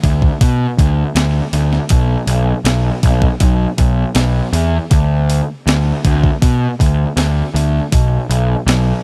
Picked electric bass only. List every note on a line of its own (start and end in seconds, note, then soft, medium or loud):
0.04 0.28 D2 medium
0.42 0.66 B2 medium
0.78 1.03 D2 medium
1.15 1.40 D2 medium
1.53 1.78 D2 medium
1.90 2.15 B1 medium
2.27 2.52 B1 medium
2.64 2.89 B1 medium
3.03 3.28 B1 medium
3.41 3.65 B1 medium
3.78 4.03 B1 medium
4.15 4.40 B1 medium
4.53 4.78 E2 medium
4.91 5.40 D2 medium
5.67 5.91 D2 medium
6.05 6.29 D2 medium
6.42 6.67 B2 medium
6.80 7.04 D2 medium
7.17 7.41 D2 medium
7.54 7.79 D2 medium
7.93 8.17 B1 medium
8.29 8.54 B1 medium
8.67 8.91 B1 medium